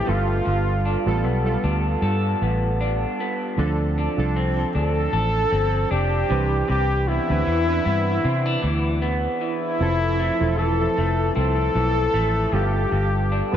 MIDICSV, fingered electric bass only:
0, 0, Header, 1, 2, 480
1, 0, Start_track
1, 0, Key_signature, 0, "major"
1, 0, Tempo, 778210
1, 291, Time_signature, 4, 2, 24, 8
1, 8369, End_track
2, 0, Start_track
2, 0, Title_t, "Fingered electric bass"
2, 0, Program_c, 0, 33
2, 50, Note_on_c, 0, 31, 88
2, 242, Note_off_c, 0, 31, 0
2, 287, Note_on_c, 0, 31, 91
2, 586, Note_off_c, 0, 31, 0
2, 655, Note_on_c, 0, 33, 83
2, 766, Note_off_c, 0, 33, 0
2, 766, Note_on_c, 0, 35, 78
2, 960, Note_off_c, 0, 35, 0
2, 1009, Note_on_c, 0, 38, 77
2, 1202, Note_off_c, 0, 38, 0
2, 1244, Note_on_c, 0, 43, 89
2, 1439, Note_off_c, 0, 43, 0
2, 1490, Note_on_c, 0, 33, 91
2, 1874, Note_off_c, 0, 33, 0
2, 2207, Note_on_c, 0, 38, 93
2, 2506, Note_off_c, 0, 38, 0
2, 2576, Note_on_c, 0, 36, 81
2, 2857, Note_off_c, 0, 36, 0
2, 2929, Note_on_c, 0, 38, 80
2, 3122, Note_off_c, 0, 38, 0
2, 3162, Note_on_c, 0, 33, 77
2, 3358, Note_off_c, 0, 33, 0
2, 3404, Note_on_c, 0, 31, 88
2, 3599, Note_off_c, 0, 31, 0
2, 3645, Note_on_c, 0, 29, 72
2, 3840, Note_off_c, 0, 29, 0
2, 3888, Note_on_c, 0, 36, 83
2, 4081, Note_off_c, 0, 36, 0
2, 4128, Note_on_c, 0, 36, 96
2, 4427, Note_off_c, 0, 36, 0
2, 4501, Note_on_c, 0, 38, 83
2, 4588, Note_off_c, 0, 38, 0
2, 4606, Note_on_c, 0, 40, 69
2, 4800, Note_off_c, 0, 40, 0
2, 4845, Note_on_c, 0, 43, 81
2, 5040, Note_off_c, 0, 43, 0
2, 5084, Note_on_c, 0, 48, 87
2, 5279, Note_off_c, 0, 48, 0
2, 5325, Note_on_c, 0, 38, 80
2, 5711, Note_off_c, 0, 38, 0
2, 6046, Note_on_c, 0, 29, 81
2, 6346, Note_off_c, 0, 29, 0
2, 6419, Note_on_c, 0, 28, 83
2, 6699, Note_off_c, 0, 28, 0
2, 6771, Note_on_c, 0, 29, 71
2, 6963, Note_off_c, 0, 29, 0
2, 7009, Note_on_c, 0, 36, 80
2, 7202, Note_off_c, 0, 36, 0
2, 7247, Note_on_c, 0, 35, 80
2, 7441, Note_off_c, 0, 35, 0
2, 7485, Note_on_c, 0, 33, 73
2, 7680, Note_off_c, 0, 33, 0
2, 7723, Note_on_c, 0, 31, 97
2, 7919, Note_off_c, 0, 31, 0
2, 7969, Note_on_c, 0, 31, 88
2, 8268, Note_off_c, 0, 31, 0
2, 8346, Note_on_c, 0, 33, 83
2, 8369, Note_off_c, 0, 33, 0
2, 8369, End_track
0, 0, End_of_file